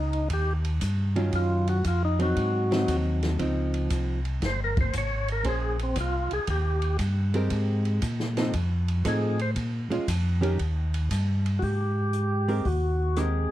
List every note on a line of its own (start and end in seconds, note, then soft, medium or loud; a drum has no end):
0.00 0.29 C#2 medium
0.00 0.28 D#4 medium
0.13 ride soft
0.30 0.80 D#2 medium
0.30 0.53 G4 medium
0.30 kick soft
0.30 ride medium
0.65 ride soft
0.81 1.32 G2 medium
0.81 kick soft
0.81 hi-hat pedal medium
0.81 ride medium
1.16 1.81 D#3 medium
1.16 1.81 F#3 medium
1.16 1.81 C#4 medium
1.16 1.81 F4 medium
1.16 ride soft
1.33 1.83 F#2 medium
1.33 1.68 F4 medium
1.33 kick soft
1.33 ride medium
1.68 1.85 F#4 medium
1.68 ride soft
1.84 2.35 F2 medium
1.84 2.03 F4 medium
1.84 kick soft
1.84 hi-hat pedal soft
1.84 ride medium
2.05 2.20 D#4 medium
2.19 2.67 F#3 medium
2.19 2.68 C4 medium
2.19 2.68 D#4 medium
2.19 2.97 F#4 medium
2.19 ride soft
2.36 2.86 G#2 medium
2.36 kick soft
2.36 ride medium
2.71 3.36 F#3 medium
2.71 3.36 C4 medium
2.71 3.36 D#4 medium
2.71 snare medium
2.71 ride soft
2.88 3.38 D#2 medium
2.88 kick soft
2.88 hi-hat pedal medium
2.88 ride medium
3.23 snare soft
3.23 ride soft
3.39 3.89 C#2 medium
3.39 4.18 F3 medium
3.39 4.19 C4 medium
3.39 4.19 D#4 medium
3.39 kick soft
3.39 ride medium
3.74 ride soft
3.90 4.41 C2 medium
3.90 kick soft
3.90 hi-hat pedal medium
3.90 ride medium
4.25 ride soft
4.42 4.92 G1 medium
4.42 4.61 C5 medium
4.42 kick soft
4.42 snare soft
4.42 ride medium
4.64 4.78 A#4 medium
4.77 4.95 C5 medium
4.77 kick medium
4.77 ride soft
4.93 5.44 G#1 medium
4.93 kick soft
4.93 hi-hat pedal medium
4.93 ride medium
4.98 5.30 C#5 loud
5.28 5.46 A#4 medium
5.28 ride soft
5.44 5.95 A#1 medium
5.44 5.76 A#3 medium
5.44 5.76 C#4 medium
5.44 5.77 G#4 medium
5.44 5.77 C5 medium
5.44 kick soft
5.44 ride medium
5.49 5.81 G#4 medium
5.79 5.98 C4 medium
5.79 ride soft
5.96 6.29 C2 medium
5.96 kick soft
5.96 hi-hat pedal medium
5.96 ride medium
6.00 6.32 F4 medium
6.31 6.40 C2 soft
6.31 6.48 G#4 loud
6.31 ride soft
6.47 6.98 D#2 medium
6.47 6.97 G4 medium
6.47 kick soft
6.47 ride medium
6.82 ride soft
6.99 7.49 G2 medium
6.99 kick soft
6.99 hi-hat pedal medium
6.99 ride medium
7.34 7.99 G#3 medium
7.34 7.99 C4 medium
7.34 7.99 G4 medium
7.34 8.00 A#4 medium
7.34 ride soft
7.50 8.01 G#2 loud
7.50 kick soft
7.50 ride medium
7.85 ride soft
8.02 8.52 A#2 medium
8.02 kick soft
8.02 hi-hat pedal medium
8.02 ride medium
8.20 snare soft
8.37 8.52 F3 medium
8.37 8.52 C4 medium
8.37 8.52 D#4 medium
8.37 8.53 A4 medium
8.37 snare soft
8.37 ride medium
8.54 9.04 F2 medium
8.54 kick soft
8.54 ride medium
8.88 ride medium
9.05 9.55 A2 medium
9.05 9.36 F3 medium
9.05 9.36 C4 medium
9.05 9.37 D#4 medium
9.05 9.41 G#4 medium
9.05 9.37 A4 medium
9.05 kick soft
9.05 hi-hat pedal medium
9.05 ride medium
9.39 9.51 C5 loud
9.39 ride soft
9.56 9.89 A#2 medium
9.56 kick soft
9.56 ride medium
9.90 9.99 A#2 soft
9.90 10.06 G#3 medium
9.90 10.06 C#4 medium
9.90 10.06 F4 medium
9.90 ride soft
10.08 10.58 F2 medium
10.08 kick soft
10.08 hi-hat pedal medium
10.08 ride medium
10.41 10.57 D#3 medium
10.41 10.57 C#4 medium
10.41 10.57 G4 medium
10.41 10.58 A#4 medium
10.41 ride medium
10.59 11.09 D#2 medium
10.59 kick soft
10.59 ride medium
10.94 ride medium
11.11 11.61 G2 loud
11.11 kick soft
11.11 hi-hat pedal medium
11.11 ride medium
11.46 ride soft
11.59 12.61 G#2 medium
11.59 11.63 F#4 medium
11.59 kick soft
11.59 open hi-hat soft
11.63 12.69 G4 medium
12.13 closed hi-hat soft
12.48 12.63 G#3 medium
12.48 12.63 C4 medium
12.48 12.64 G4 medium
12.48 12.64 A#4 medium
12.48 open hi-hat soft
12.65 13.48 D#2 medium
12.65 13.19 F#4 medium
12.65 kick soft
12.65 open hi-hat soft
13.16 13.48 G#3 medium
13.16 13.48 C4 medium
13.16 13.48 G4 medium
13.16 13.51 G#4 medium
13.16 13.49 A#4 medium
13.16 cross-stick medium
13.16 closed hi-hat soft